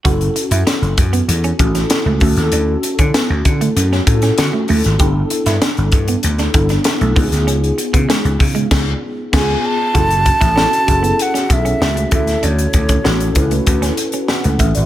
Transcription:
<<
  \new Staff \with { instrumentName = "Flute" } { \time 4/4 \key fis \phrygian \tempo 4 = 97 r1 | r1 | r1 | r2. gis''8 a''8~ |
a''2 fis''8 e''4 e''8 | cis''2 r2 | }
  \new Staff \with { instrumentName = "Tine electric piano" } { \time 4/4 \key fis \phrygian <cis' e' fis' a'>4. r4 <cis' e' fis' a'>4 <cis' e' fis' a'>8~ | <cis' e' fis' a'>4 r4. <cis' e' f' fis' a'>4 r8 | <b d' e' a'>4. r4 <b d' e' a'>4 <b ees' eis' fis' gis'>8~ | <b ees' eis' fis' gis'>4 r2 <b eis' gis'>8 r8 |
<cis' e' fis' a'>8 r8 <cis' e' fis' a'>8 <cis' e' fis' gis' a'>4. r8 <cis' e' fis' a'>8~ | <cis' e' fis' a'>8 r8 <cis' e' fis' a'>8 <cis' e' fis' b'>4. fis''8 e''16 d''16 | }
  \new Staff \with { instrumentName = "Clean electric guitar" } { \time 4/4 \key fis \phrygian fis'16 r8 e'16 cis'16 r8 b16 r16 cis'16 r16 cis'16 r16 a16 a16 r16 | d'16 r8 cis'16 b16 r8 a16 r16 cis'16 r16 cis'16 r16 a16 a16 r16 | g'16 r8 e'16 d'16 r8 b16 r16 d'16 r16 d'16 r16 a16 b16 r16 | cis'16 r8 b16 gis16 r8 gis16 r2 |
fis'16 r8 e'16 cis'16 r8 b16 r16 cis'16 r16 cis'16 r16 a16 a16 r16 | d'16 r8 cis'16 b16 r8 a16 r16 cis'16 r16 cis'16 r16 a16 a16 r16 | }
  \new Staff \with { instrumentName = "Slap bass" } { \clef bass \time 4/4 \key fis \phrygian fis,,8 r16 fis,16 r16 fis,,16 fis,8 e,8 a,,8 r16 cis,16 d,16 ees,16 | d,8 r16 d16 r16 d,16 d8 fis,8 a,8 d16 r16 d,16 gis,,16 | g,,8 r16 g,16 r16 g,,16 g,8 d,8 g,,8 r16 b,,16 cis,16 d,16 | cis,8 r16 cis16 r16 cis,16 cis8 cis,8 r8 cis,8 r8 |
fis,,8. a,,8 r16 fis,,8 r8 b,,8 cis,8 d,8 | d,8 d,8 a,,8 cis,8 d,8 r8. cis,16 a,,16 gis,,16 | }
  \new DrumStaff \with { instrumentName = "Drums" } \drummode { \time 4/4 <hh bd>16 hh16 hh16 hh16 <hh sn>16 hh16 <hh bd>16 hh16 hh16 hh16 <hh bd>16 <hh sn>16 <hh sn>8 <hho bd>16 <hh sn>16 | hh8 hh16 <hh bd>16 <hh sn>8 <hh bd>16 hh16 hh16 sn16 <hh bd>16 <hh sn>16 <hh sn>8 hho16 <hh sn>16 | <hh bd>8 hh16 <hh sn>16 <hh sn>16 hh16 <hh bd>16 hh16 hh16 <hh sn>16 <hh bd>16 <hh sn>16 <hh sn>16 hh16 <hho bd>16 <hh sn>16 | hh16 hh16 hh16 <hh bd>16 <hh sn>16 hh16 <hho bd>16 hh16 <cymc bd sn>4 <cymc bd sn>4 |
<hh bd>16 hh16 <hh bd>16 <hh bd sn>16 sn16 hh16 <hh bd>16 hh16 hh16 <hh sn>16 <hh bd>16 hh16 sn16 hh16 <hh bd>16 <hh sn>16 | hh16 hh16 <hh bd>16 <hh bd>16 sn16 hh16 <hh bd>16 hh16 <hh bd>16 <hh sn>16 hh16 hh16 sn16 hh16 <hh bd>16 hh16 | }
>>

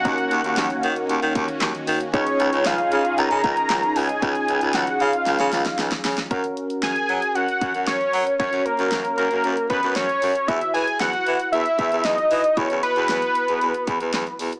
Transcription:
<<
  \new Staff \with { instrumentName = "Analog synth lead" } { \time 4/4 \key fis \major \tempo 4 = 115 fis''2~ fis''8 r4. | cis''4 eis''4 ais''4. gis''8~ | gis''4 fis''8 eis''4. r4 | r4 gis''4 fis''4 cis''4 |
cis''8 ais'4 ais'4 b'8 cis''4 | e''8 gis''8 fis''4 e''4 dis''4 | cis''8 b'2. r8 | }
  \new Staff \with { instrumentName = "Synth keys" } { \time 4/4 \key fis \major <cis' dis' fis' ais'>1 | <cis' dis' eis' gis'>1 | <cis' dis' eis' gis'>1 | <cis' fis' ais'>1 |
<cis' fis' cis''>1 | <e' fis' b'>1 | <e' fis' b'>1 | }
  \new Staff \with { instrumentName = "Analog synth pad" } { \time 4/4 \key fis \major <dis ais cis' fis'>1 | <cis dis' gis'>1~ | <cis dis' gis'>1 | r1 |
r1 | r1 | r1 | }
  \new Staff \with { instrumentName = "Baritone saxophone" } { \clef bass \time 4/4 \key fis \major dis,16 r16 dis,16 dis,16 dis,16 r16 dis16 r16 dis,16 dis16 dis,16 r16 dis,16 r16 dis16 r16 | cis,16 r16 cis,16 cis,16 cis,16 r16 cis16 r16 cis,16 cis16 cis,16 r16 cis,16 r16 cis,16 r16 | cis,16 r16 cis,16 cis,16 cis,16 r16 cis16 r16 cis,16 cis16 cis,16 r16 cis,16 r16 cis16 r16 | fis,16 r8. fis,16 r16 fis16 r16 fis,16 r16 fis,16 fis,16 fis,16 r16 fis16 r16 |
fis,16 fis,16 r16 fis,16 fis,16 r16 fis,16 fis,16 fis,16 r16 fis,16 fis,16 fis,16 r16 fis,16 r16 | e,16 r16 e16 r16 e,16 r16 e16 r16 e,16 r16 e,16 e,16 e,16 r16 e16 r16 | e,16 e,16 r16 e,16 e,16 r8 e,16 e,16 r16 e,16 e,16 e,16 r16 e,16 r16 | }
  \new DrumStaff \with { instrumentName = "Drums" } \drummode { \time 4/4 <hh bd>16 hh16 hh16 hh16 <hh sn>16 hh16 hh16 hh16 hh16 hh16 <hh bd>16 hh16 <hc hh sn>16 hh16 hho16 hh16 | <hh bd>16 hh16 hh16 hh16 <hh sn>16 hh16 hh16 hh16 hh16 hh16 <hh bd>16 hh16 <hc hh sn>16 hh16 hho16 hh16 | <hh bd>16 hh16 hh16 hh16 <hh sn>16 hh16 hh16 hh16 <hh sn>16 <hh sn>16 <hh sn>16 <hh sn>16 <hh sn>16 <hh sn>16 <hho sn>16 sn16 | <hh bd>16 hh16 hh16 hh16 <hh sn>16 hh16 hh16 hh16 hh16 hh16 <hh bd>16 hh16 <hh sn>16 hh16 hho16 hh16 |
<hh bd>16 hh16 hh16 hh16 <hh sn>16 hh16 hh16 hh16 hh16 hh16 <hh bd>16 hh16 <hh sn>16 hh16 hho16 hh16 | <hh bd>16 hh16 hh16 hh16 <hh sn>16 hh16 hh16 hh16 hh16 hh16 <hh bd>16 hh16 <hh sn>16 hh16 hho16 hh16 | <hh bd>16 hh16 hh16 hh16 <hh sn>16 hh16 hh16 hh16 hh16 hh16 <hh bd>16 hh16 <hh sn>16 hh16 hho16 hh16 | }
>>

